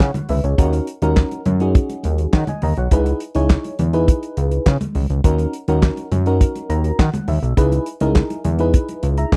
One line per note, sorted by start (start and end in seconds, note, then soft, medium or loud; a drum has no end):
0.00 0.11 C#3 loud
0.00 0.28 C#5 soft
0.00 0.28 F#5 medium
0.00 kick loud
0.00 snare loud
0.00 clap medium
0.00 muted conga soft
0.14 closed hi-hat medium
0.14 high conga medium
0.14 low conga medium
0.29 0.41 C#2 medium
0.29 0.44 B4 medium
0.29 0.43 E5 medium
0.29 open hi-hat medium
0.29 low conga medium
0.44 0.55 C#2 medium
0.44 0.72 G#4 medium
0.44 0.72 C#5 medium
0.44 closed hi-hat soft
0.58 0.81 D#2 loud
0.58 0.87 C#4 loud
0.58 0.87 D#4 medium
0.58 0.88 F#4 loud
0.58 0.88 A#4 loud
0.58 kick loud
0.58 closed hi-hat medium
0.73 closed hi-hat medium
0.73 muted conga soft
0.87 closed hi-hat medium
1.02 1.24 D#2 medium
1.02 1.41 C#4 loud
1.02 1.41 D#4 medium
1.02 1.41 F#4 medium
1.02 1.41 A#4 loud
1.02 closed hi-hat medium
1.02 high conga medium
1.17 kick loud
1.17 snare loud
1.17 clap medium
1.17 muted conga soft
1.31 closed hi-hat soft
1.31 muted conga soft
1.46 1.79 F#2 loud
1.46 closed hi-hat medium
1.46 high conga medium
1.46 low conga medium
1.60 2.38 C#4 medium
1.60 2.38 D#4 medium
1.60 2.38 F#4 medium
1.60 2.38 G#4 medium
1.60 closed hi-hat soft
1.75 kick loud
1.75 closed hi-hat medium
1.75 muted conga soft
1.89 closed hi-hat soft
1.89 muted conga soft
2.03 2.27 D#2 medium
2.03 closed hi-hat medium
2.03 high conga soft
2.18 closed hi-hat soft
2.33 2.44 D#3 loud
2.33 2.48 C#5 soft
2.33 2.48 F#5 medium
2.33 kick loud
2.33 snare loud
2.33 clap medium
2.33 muted conga soft
2.47 2.62 D#5 medium
2.47 2.62 G#5 medium
2.47 closed hi-hat medium
2.47 high conga medium
2.47 low conga medium
2.62 2.74 D#2 loud
2.62 2.77 D#5 medium
2.62 2.77 A#5 medium
2.62 open hi-hat medium
2.62 low conga medium
2.77 2.88 B1 medium
2.77 3.06 C#5 medium
2.77 3.05 F#5 medium
2.77 closed hi-hat soft
2.91 3.14 C#2 loud
2.91 3.21 D#4 loud
2.91 3.21 E4 medium
2.91 3.21 G#4 medium
2.91 3.21 B4 loud
2.91 kick loud
2.91 closed hi-hat medium
2.91 muted conga soft
3.06 closed hi-hat medium
3.06 muted conga soft
3.20 closed hi-hat medium
3.35 3.58 C#2 loud
3.35 3.74 D#4 loud
3.35 3.74 E4 medium
3.35 3.74 G#4 medium
3.35 3.74 C#5 medium
3.35 closed hi-hat medium
3.35 high conga medium
3.50 kick loud
3.50 snare loud
3.50 clap loud
3.50 muted conga soft
3.64 closed hi-hat medium
3.64 muted conga soft
3.79 4.12 E2 loud
3.79 closed hi-hat medium
3.79 high conga medium
3.79 low conga medium
3.93 4.71 D#4 medium
3.93 4.71 E4 medium
3.93 4.71 G#4 medium
3.93 4.71 B4 loud
3.93 closed hi-hat soft
4.08 kick loud
4.08 closed hi-hat medium
4.08 muted conga soft
4.23 closed hi-hat soft
4.37 4.59 C#2 medium
4.37 closed hi-hat medium
4.51 closed hi-hat medium
4.66 4.77 C#3 loud
4.66 kick loud
4.66 snare loud
4.66 clap loud
4.66 muted conga soft
4.81 closed hi-hat medium
4.81 muted conga soft
4.81 high conga medium
4.81 low conga medium
4.95 5.06 C#2 medium
4.95 open hi-hat medium
4.95 low conga medium
5.10 5.21 C#2 medium
5.10 closed hi-hat soft
5.24 5.47 D#2 loud
5.24 5.53 C#4 medium
5.24 5.54 D#4 medium
5.24 5.54 F#4 medium
5.24 5.54 A#4 loud
5.24 kick loud
5.24 closed hi-hat medium
5.24 muted conga soft
5.38 closed hi-hat medium
5.38 muted conga soft
5.53 closed hi-hat medium
5.68 5.90 D#2 loud
5.68 6.07 C#4 medium
5.68 6.07 D#4 medium
5.68 6.07 F#4 medium
5.68 6.07 A#4 loud
5.68 closed hi-hat soft
5.68 high conga medium
5.83 kick loud
5.83 snare loud
5.83 clap medium
5.83 muted conga soft
5.97 closed hi-hat soft
5.97 muted conga soft
6.12 6.45 F#2 loud
6.12 closed hi-hat medium
6.12 high conga medium
6.12 low conga medium
6.26 7.04 C#4 medium
6.26 7.04 D#4 medium
6.26 7.04 F#4 medium
6.26 7.04 A#4 loud
6.26 closed hi-hat soft
6.41 kick loud
6.41 closed hi-hat medium
6.41 muted conga soft
6.55 closed hi-hat soft
6.55 muted conga soft
6.69 6.92 D#2 medium
6.69 6.97 A#5 medium
6.69 closed hi-hat medium
6.84 closed hi-hat medium
6.99 7.10 D#3 loud
6.99 7.26 F#5 medium
6.99 kick loud
6.99 snare loud
6.99 clap medium
6.99 muted conga soft
7.14 closed hi-hat medium
7.14 muted conga soft
7.14 high conga medium
7.14 low conga medium
7.28 7.39 D#2 loud
7.28 7.56 E5 medium
7.28 open hi-hat medium
7.28 low conga medium
7.43 7.54 B1 medium
7.43 closed hi-hat soft
7.57 7.79 C#2 loud
7.57 7.86 D#4 medium
7.57 7.87 E4 medium
7.57 7.87 G#4 medium
7.57 7.87 B4 loud
7.57 kick loud
7.57 closed hi-hat medium
7.57 muted conga soft
7.72 closed hi-hat medium
7.72 muted conga soft
7.86 closed hi-hat medium
8.00 8.23 C#2 medium
8.00 8.40 D#4 medium
8.00 8.40 E4 medium
8.00 8.40 G#4 medium
8.00 8.40 A#4 medium
8.00 closed hi-hat medium
8.00 high conga medium
8.15 kick loud
8.15 snare loud
8.15 clap medium
8.15 muted conga soft
8.30 closed hi-hat soft
8.30 muted conga soft
8.44 8.78 E2 medium
8.44 closed hi-hat medium
8.44 high conga medium
8.44 low conga medium
8.59 9.37 D#4 medium
8.59 9.37 E4 medium
8.59 9.37 G#4 medium
8.59 9.04 B4 loud
8.59 closed hi-hat soft
8.74 kick loud
8.74 closed hi-hat medium
8.74 muted conga soft
8.89 closed hi-hat medium
8.89 muted conga soft
9.03 9.25 C#2 medium
9.03 closed hi-hat medium
9.17 9.32 E5 medium
9.17 9.32 A#5 medium
9.17 closed hi-hat medium
9.32 9.37 C#3 loud
9.32 9.37 D#5 soft
9.32 9.37 G#5 medium
9.32 kick loud
9.32 snare loud
9.32 clap medium